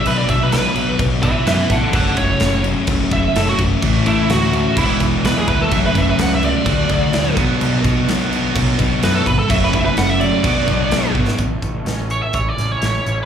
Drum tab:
CC |x-x-x-x-x-x-x-x-|x-x-x-x-x-x-x-x-|x-x-x-x-x-x-x-x-|x-x-x-x-x-x-x-x-|
HH |----------------|----------------|----------------|----------------|
SD |----o-------o---|----o-------o---|----o-------o---|----o-------o---|
BD |--o-----o-o---o-|o-o-----o-o---o-|o-o-----o-o---o-|o-o-----o-o---o-|

CC |x-x-x-x-x-x-x-x-|x-x-x-x-x-x-x---|----------------|
HH |----------------|----------------|x-x-x-x-x-x-x-x-|
SD |----o-------o---|----o-------o--o|----o-----o-o---|
BD |--o-----o-o---o-|o-o-----o-o---o-|o-o-----o-------|